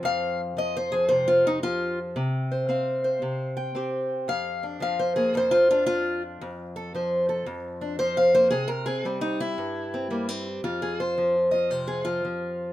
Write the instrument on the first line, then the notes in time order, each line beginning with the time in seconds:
steel-string acoustic guitar
Already playing: F3 C4
0.03 F2 F5
0.57 F3 D#5
0.77 C5
0.92 F3 G#4
1.09 C3 C5
1.28 F4
1.47 D#4
1.63 F3 F4
2.16 C3
2.52 C5
2.69 C4 F5
3.04 C5
3.22 C3
3.57 G5
3.75 C4 G4
4.28 F2 F5
4.63 D4
4.80 F3 F5
4.99 C5
5.16 A#3 G#4
5.34 F2 C5
5.51 F4
5.71 D4 F4
5.86 F4
6.41 F2
6.76 A4
6.94 F3 C5
7.29 A4
7.46 F2
7.81 D4
7.99 F3 C5
8.17 F5
8.35 A#3 C5
8.51 C3 G#4
8.68 A#4
8.86 C4 G#4
9.05 G3 C4
9.21 D#4
9.40 E4
9.58 G2
9.94 C4
10.10 G3 A#3
10.29 C4
10.64 F2 F4
10.82 G#4
11.00 C5
11.18 F3
11.51 F4 D#5
11.70 C3 C5
11.88 G#4
12.05 F3 F4
12.25 F3